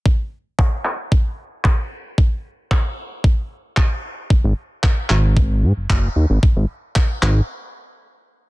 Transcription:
0.06 kick loud
0.59 kick loud
0.59 clap loud
0.85 clap medium
1.12 kick loud
1.64 kick loud
1.64 clap loud
2.18 kick loud
2.71 kick loud
2.71 clap loud
3.24 kick loud
3.77 kick loud
3.77 clap loud
4.30 4.41 G#1 soft
4.30 kick loud
4.44 4.53 G#1 loud
4.83 kick loud
4.83 clap loud
5.10 5.65 G#1 medium
5.10 clap medium
5.37 kick loud
5.63 5.73 G#2 medium
5.77 5.87 F#1 soft
5.90 6.08 F#1 medium
5.90 kick loud
5.90 clap loud
6.16 6.26 D#2 medium
6.30 6.39 G#1 medium
6.43 6.54 G#1 soft
6.43 kick loud
6.56 6.65 G#1 medium
6.96 kick loud
6.96 clap loud
7.22 7.41 G#1 medium
7.22 clap medium

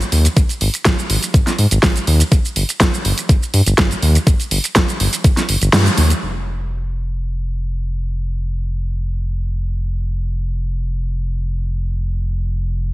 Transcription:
0.01 closed hi-hat soft
0.01 shaker soft
0.12 0.28 D#2 loud
0.12 open hi-hat loud
0.25 closed hi-hat soft
0.25 shaker medium
0.37 0.44 G#1 loud
0.37 kick loud
0.37 closed hi-hat medium
0.37 shaker medium
0.49 closed hi-hat soft
0.49 shaker soft
0.61 0.69 G#1 loud
0.61 open hi-hat medium
0.74 closed hi-hat soft
0.74 shaker medium
0.85 0.93 G#1 medium
0.85 kick loud
0.85 snare loud
0.85 closed hi-hat medium
0.85 shaker medium
0.99 shaker soft
1.10 1.18 G#1 loud
1.10 open hi-hat loud
1.23 closed hi-hat medium
1.23 shaker medium
1.34 1.42 G#1 medium
1.34 kick loud
1.34 closed hi-hat medium
1.34 shaker medium
1.47 snare soft
1.47 closed hi-hat soft
1.47 shaker soft
1.58 1.66 G#2 medium
1.58 open hi-hat loud
1.71 1.78 G#1 medium
1.71 closed hi-hat medium
1.71 shaker medium
1.83 1.98 G#1 medium
1.83 kick loud
1.83 snare loud
1.83 open hi-hat medium
1.83 shaker medium
1.96 closed hi-hat soft
1.96 shaker soft
2.07 2.23 D#2 medium
2.07 open hi-hat loud
2.20 closed hi-hat soft
2.20 shaker medium
2.32 2.40 G1 loud
2.32 kick loud
2.32 closed hi-hat medium
2.32 shaker medium
2.45 shaker soft
2.56 2.64 G1 loud
2.56 open hi-hat medium
2.69 closed hi-hat soft
2.69 shaker medium
2.80 2.88 G1 medium
2.80 kick loud
2.80 snare loud
2.80 closed hi-hat medium
2.80 shaker medium
2.94 shaker soft
3.05 3.13 G1 medium
3.05 open hi-hat loud
3.18 closed hi-hat medium
3.18 shaker medium
3.29 3.37 G1 medium
3.29 kick loud
3.29 closed hi-hat medium
3.29 shaker medium
3.43 shaker soft
3.54 3.61 G2 medium
3.54 open hi-hat loud
3.66 3.74 G1 medium
3.66 closed hi-hat medium
3.66 shaker medium
3.78 3.93 G1 medium
3.78 kick medium
3.78 snare loud
3.78 closed hi-hat medium
3.78 shaker medium
3.91 closed hi-hat soft
3.91 shaker soft
4.02 4.18 D#2 medium
4.02 open hi-hat loud
4.15 closed hi-hat medium
4.15 shaker medium
4.27 4.35 G1 loud
4.27 kick loud
4.27 closed hi-hat medium
4.27 shaker medium
4.40 closed hi-hat soft
4.40 shaker soft
4.51 4.59 G1 loud
4.51 open hi-hat loud
4.64 closed hi-hat medium
4.64 shaker medium
4.76 4.83 G1 medium
4.76 kick loud
4.76 snare loud
4.76 closed hi-hat medium
4.76 shaker medium
4.88 closed hi-hat soft
4.88 shaker soft
5.00 5.08 G1 medium
5.00 open hi-hat loud
5.13 closed hi-hat medium
5.13 shaker medium
5.24 5.32 G1 medium
5.24 kick loud
5.24 closed hi-hat medium
5.24 shaker medium
5.37 snare soft
5.37 closed hi-hat soft
5.37 shaker soft
5.49 5.57 G1 medium
5.49 open hi-hat loud
5.62 5.69 G1 loud
5.62 closed hi-hat medium
5.62 shaker medium
5.73 5.89 G2 loud
5.73 snare loud
5.73 open hi-hat medium
5.73 shaker medium
5.86 closed hi-hat soft
5.86 shaker soft
5.98 6.13 D#2 medium
5.98 open hi-hat loud
6.10 closed hi-hat medium
6.10 shaker medium
6.22 12.94 F1 medium

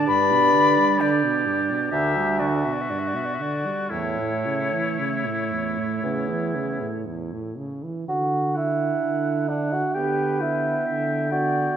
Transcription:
0.00 3.60 D4 medium
0.06 0.84 G2 medium
0.06 0.33 G2 medium
0.06 1.00 D5 loud
0.06 1.02 B5 loud
0.32 0.56 B2 medium
0.55 0.79 D3 medium
0.78 1.02 G3 medium
0.99 1.25 D3 medium
0.99 1.90 G4 medium
0.99 1.93 D5 loud
1.24 1.48 B2 medium
1.46 1.72 G2 medium
1.70 1.92 B2 medium
1.90 2.72 D2 medium
1.90 2.18 D3 medium
1.90 2.38 G4 medium
1.90 2.41 E5 loud
2.17 2.42 G3 medium
2.39 2.67 D3 medium
2.39 3.91 F#4 medium
2.39 2.49 D5 medium
2.47 2.56 E5 medium
2.55 2.66 D5 medium
2.64 2.92 B2 medium
2.64 2.74 E5 medium
2.73 2.83 D5 medium
2.81 2.91 E5 medium
2.90 3.16 G2 medium
2.90 3.00 D5 medium
2.99 3.09 E5 medium
3.07 3.18 D5 medium
3.15 3.41 B2 medium
3.15 3.27 E5 medium
3.25 3.36 D5 medium
3.34 3.43 E5 medium
3.40 3.67 D3 medium
3.40 3.90 D5 medium
3.65 3.91 G3 medium
3.90 4.20 E2 medium
3.90 4.81 A2 medium
3.90 7.70 A3 medium
3.90 7.05 E4 medium
3.90 7.02 C#5 medium
4.19 4.47 A2 medium
4.46 4.74 C#3 medium
4.73 5.01 E3 medium
4.99 5.28 C#3 medium
5.27 5.54 A2 medium
5.53 5.80 E2 medium
5.78 6.03 A2 medium
6.03 6.89 E2 medium
6.03 6.31 C#3 medium
6.30 6.57 E3 medium
6.55 6.82 C#3 medium
6.81 7.08 A2 medium
7.07 7.34 E2 medium
7.33 7.59 A2 medium
7.58 7.86 C#3 medium
7.84 8.08 E3 medium
8.08 8.91 D3 medium
8.08 8.58 F#4 medium
8.55 9.46 D4 medium
8.55 9.50 E4 medium
8.55 9.46 F#5 medium
9.03 9.84 D3 medium
9.48 9.74 D4 medium
9.48 9.94 D4 medium
9.48 9.93 F#5 soft
9.72 9.96 F#4 medium
9.94 10.75 D3 medium
9.94 10.40 B3 medium
9.94 10.42 G4 medium
9.94 10.87 B4 medium
9.94 10.39 G5 medium
10.40 11.30 B3 medium
10.40 11.31 E4 medium
10.40 11.29 G5 medium
10.85 11.67 D3 medium
10.85 11.33 E5 medium
11.31 11.75 B3 medium
11.31 11.76 F#4 medium
11.31 11.77 D5 medium
11.31 11.75 G5 medium

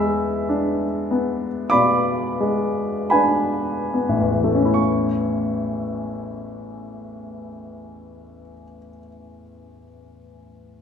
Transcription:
0.00 1.68 E2 medium
0.00 0.85 G#3 soft
0.00 1.68 E5 medium
0.00 1.68 B5 medium
0.00 1.71 E6 medium
0.49 1.46 D4 soft
1.11 2.12 B3 soft
1.70 2.81 B2 soft
1.70 3.06 D5 medium
1.70 3.06 B5 medium
1.70 3.09 D6 medium
2.40 3.60 G#3 soft
3.10 4.46 D4 soft
3.10 4.73 B4 soft
3.10 4.74 G#5 soft
3.10 4.77 B5 medium
3.94 4.77 B3 soft
4.09 8.41 A1 soft
4.21 8.54 E2 soft
4.31 8.64 E3 soft
4.44 8.76 A3 soft
4.55 8.87 C#4 soft
4.65 8.98 E4 soft
4.74 9.06 C#6 soft

